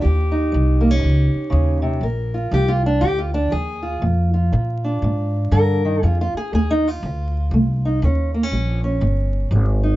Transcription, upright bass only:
X:1
M:4/4
L:1/8
Q:"Swing" 1/4=120
K:Eb
V:1 name="Upright bass" clef=bass
E,,2 C,,2 _D,, z E,,2 | B,,,2 C,,2 D,,2 E,,2 | F,,2 B,,2 A,,2 G,,2 | F,, z E,,2 D,,2 C,,2 |
E,,2 B,,,2 G,,,2 A,,,2 |]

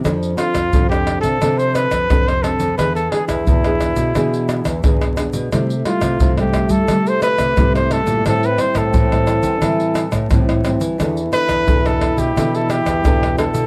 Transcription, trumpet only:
X:1
M:4/4
L:1/16
Q:1/4=88
K:Ephr
V:1 name="Trumpet"
z2 F3 G2 A2 c B3 c A2 | B A ^G E8- E3 z2 | z2 F3 G2 A2 c B3 c A2 | A B c A8- A3 z2 |
z2 B3 A2 G2 A G4 A2 |]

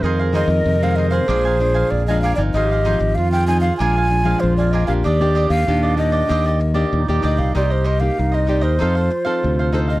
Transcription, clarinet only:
X:1
M:4/4
L:1/8
Q:1/4=96
K:Eb
V:1 name="Clarinet"
B4 A3 z | G2 F2 F4 | G2 D3 z E2 | [K:Cm] G2 E2 F4 |]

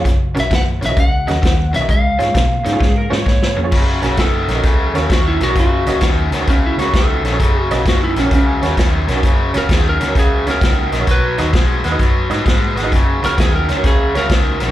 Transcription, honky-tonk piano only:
X:1
M:4/4
L:1/16
Q:"Swing" 1/4=130
K:F#
V:1 name="Honky-tonk piano"
z2 [CFAc] z3 [Ac] [CFAd] z2 [CFAd] z3 [Ac] [CFAd] | z2 [CEGc] z3 [Gc] [CEGc] z2 [CEGc] z3 [Gc] [CEGc] | z2 [CFAc] z3 [Ac] [CFAd] z2 [CFAc] z3 [Ac] [CFAc] | z2 [CFAd] z3 [Ac] [CFAc] z2 [CFAc] z3 [Ac] [CFAc] |
z2 [CFAd] z3 [Ac] [CFAc] z2 [CFAc] z3 [Ac] [CFAc] | z2 [CFAc] z3 [Ac] [CFAc] z2 [CFAc] z3 [Ad] [CFAc] | z2 [DFBd] z3 [Bf] [DFBd] z2 [DFBd] z3 [Bf] [DFBd] | z2 [CFAc] z3 [Ac] [CFAc] z2 [CFAc] z3 [Ac] [CFAc] |]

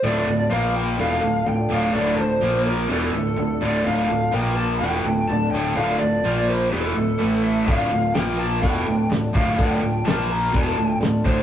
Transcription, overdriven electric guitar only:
X:1
M:4/4
L:1/8
Q:1/4=126
K:Dm
V:1 name="Overdriven electric guitar" clef=bass
[D,,A,,D,] [D,,A,,] [B,,F,B,]2 [E,,=B,,E,] [D,,A,,] [D,,A,,] [D,,A,,D,] | [D,,A,,D,] [D,,A,,] [B,,F,B,]2 [E,,=B,,E,] [D,,A,,] [D,,A,,] [D,,A,,D,] | [D,,A,,D,] [D,,A,,] [B,,F,B,]2 [E,,=B,,E,] [D,,A,,] [D,,A,,] [D,,A,,D,] | [D,,A,,D,] [D,,A,,] [B,,F,B,]2 [E,,=B,,E,] [D,,A,,] [A,,E,A,]2 |
[D,,A,,D,] [D,,A,,] [B,,F,B,]2 [E,,=B,,E,] [D,,A,,] [D,,A,,] [D,,A,,D,] | [D,,A,,D,] [D,,A,,] [B,,F,B,]2 [E,,=B,,E,] [D,,A,,] [D,,A,,] [D,,A,,D,] |]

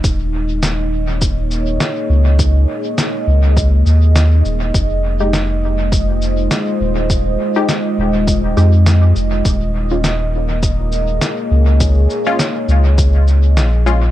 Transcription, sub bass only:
X:1
M:4/4
L:1/8
Q:"Swing 16ths" 1/4=102
K:Ebmix
V:1 name="Sub bass" clef=bass
E,,,6 z D,,- | D,, z2 D,,2 E,,2 E,,, | F,,,6 z E,,,- | E,,, z2 E,,,2 F,,2 F,,, |
E,,,6 z D,,- | D,, z2 D,,3 B,,,2 |]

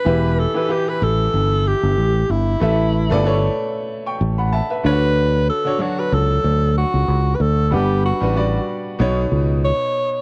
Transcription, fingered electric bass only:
X:1
M:4/4
L:1/16
Q:"Swing 16ths" 1/4=94
K:Edor
V:1 name="Fingered electric bass" clef=bass
E,,,3 z3 A,,,2 G,,,3 G,,, A,,,2 G,,,2 | A,,,3 G,,,3 z4 A,,,3 z D,,2- | D,,3 z3 C,,2 D,,3 C,, C,,2 D,,2 | G,,,3 A,,,3 z2 B,,,2 C,,3 z3 |]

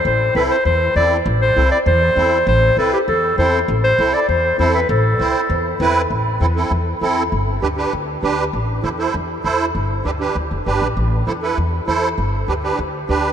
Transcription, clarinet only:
X:1
M:4/4
L:1/16
Q:1/4=198
K:Am
V:1 name="Clarinet"
c4 B2 c2 c4 d3 z | z2 c4 d2 c8 | c4 A2 G2 A4 c3 z | z2 c4 d2 c4 c2 B2 |
A12 z4 | z16 | z16 | z16 |
z16 | z16 | z16 |]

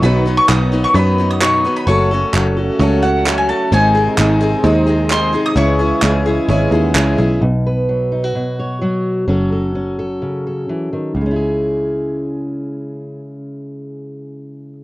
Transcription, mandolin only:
X:1
M:4/4
L:1/16
Q:1/4=129
K:C#m
V:1 name="Mandolin"
b3 c' d'3 c' b3 d' c'3 b | c'8 z2 f3 g a2 | g12 ^b3 d' | c'12 z4 |
z16 | z16 | z16 | z16 |]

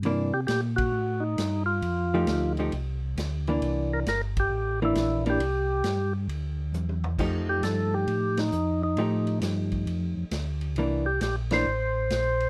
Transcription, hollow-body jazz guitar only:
X:1
M:4/4
L:1/8
Q:"Swing" 1/4=134
K:F
V:1 name="Hollow-body jazz guitar"
[E,B,D] z6 z | z [F,A,_EG]2 [F,A,EG] z3 [=E,B,D]- | [E,B,D]2 z3 [E,B,D]2 [E,B,D] | z8 |
[F,A,_EG]4- [F,A,EG] z3 | [F,A,_EG]4- [F,A,EG] z3 | [E,B,D] z2 [E,B,D] z4 |]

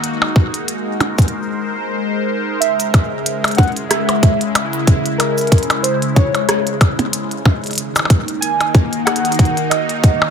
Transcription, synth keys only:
X:1
M:4/4
L:1/8
Q:"Swing 16ths" 1/4=93
K:C#m
V:1 name="Synth keys"
z8 | e3 f e4 | ^A2 ^B c2 z3 | z2 g2 f2 d2 |]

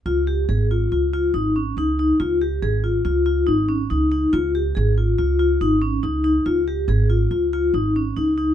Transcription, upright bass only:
X:1
M:5/4
L:1/8
Q:1/4=140
K:Dblyd
V:1 name="Upright bass" clef=bass
D,,2 A,,,2 D,,2 A,,,2 D,,2 | D,,2 A,,,2 D,,2 A,,,2 D,,2 | D,,2 A,,,2 D,,2 A,,,2 D,,2 | D,,2 A,,,2 D,,2 A,,,2 D,,2 |]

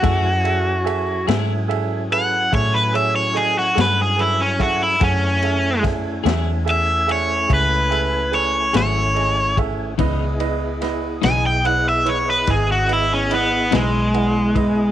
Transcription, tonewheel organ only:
X:1
M:12/8
L:1/8
Q:3/8=48
K:F#dor
V:1 name="Tonewheel organ"
[F,CEg]12 | [A,CEg]12 | [B,EGd]12 |]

